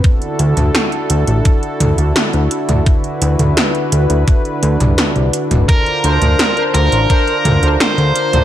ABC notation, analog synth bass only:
X:1
M:4/4
L:1/16
Q:1/4=85
K:Dmix
V:1 name="Analog synth bass" clef=bass
z2 D,, D,, z2 D,, A,,, z2 D,, D,, z D,, z D,, | z2 D,, D,, z2 D,, D,, z2 D,, C,, z C,, z D,,, | z2 D,, D,, z2 D,, A,,, z2 D,, D,, z D,, z D,, |]